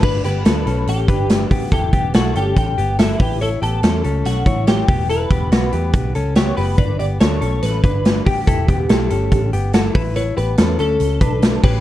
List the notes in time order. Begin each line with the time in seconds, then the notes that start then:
0.03 G1 D4 B4, kick, crash
0.24 G1 B3 G4 B4, closed hi-hat
0.45 D2 D4 A4, snare, closed hi-hat
0.66 B1 C#4 A4, closed hi-hat
0.87 A1 G4, closed hi-hat
1.08 G1 D4 B4, kick, closed hi-hat
1.29 snare, closed hi-hat
1.48 B3 F#4 G4, kick, open hi-hat
1.72 E1 E4 G4 A4, kick, closed hi-hat
1.93 E1 B3 G4, kick, closed hi-hat
2.14 B1 E4 F#4 A4, snare, closed hi-hat
2.35 G1 C#4 G4 A4, closed hi-hat
2.56 A1 G4, kick, closed hi-hat
2.78 G1 B3 G4, closed hi-hat
2.99 E4 A4, snare, closed hi-hat
3.20 A1 E4 G4 B4, kick, open hi-hat
3.41 E4 A4 C#5, closed hi-hat
3.62 A1 B3 G4 A4, closed hi-hat
3.83 E2 C#4 A4, snare, closed hi-hat
4.04 C#2 C#4 A4, closed hi-hat
4.25 B1 F#4, snare, closed hi-hat
4.46 A1 E4 C#5, kick, closed hi-hat
4.67 G4, snare, closed hi-hat
4.88 E1 B3 G4, kick, open hi-hat
5.10 E4 A4 B4, closed hi-hat
5.31 E1 B3 G4, kick, closed hi-hat
5.52 B1 B3 F#4, snare, closed hi-hat
5.72 E2 B3 G4, closed hi-hat
5.93 B1, kick, closed hi-hat
6.15 C#2 C#4 A4, closed hi-hat
6.35 B3 G4 C#5, snare, closed hi-hat
6.57 F#1 B3 G4 B4, open hi-hat
6.78 G1 D4 B4 D5, kick, closed hi-hat
6.99 G1 B3 G4 D5, closed hi-hat
7.20 D2 D4 A4 C#5, snare, closed hi-hat
7.41 B1 C#4 A4, closed hi-hat
7.62 A1 B4, snare, closed hi-hat
7.84 G1 D4 B4, kick, closed hi-hat
8.05 snare, closed hi-hat
8.26 B3 G4, kick, open hi-hat
8.47 E1 E4 A4, kick, closed hi-hat
8.68 E1 B3 G4, kick, closed hi-hat
8.89 B1 E4 A4, snare, closed hi-hat
9.10 G1 C#4 A4, closed hi-hat
9.31 A1, kick, closed hi-hat
9.53 G1 B3 G4, closed hi-hat
9.73 E4 F#4 A4, snare, closed hi-hat
9.95 A1 E4 A4 B4, kick, open hi-hat
10.16 E4 B4 C#5, closed hi-hat
10.37 A1 B3 G4 B4, closed hi-hat
10.57 E2 C#4 A4, snare, closed hi-hat
10.79 D2 C#4 A4, closed hi-hat
11.00 C#2, closed hi-hat
11.21 B1 D4 B4, kick, closed hi-hat
11.42 snare, closed hi-hat
11.64 A1 C#4 G4 B4, kick, crash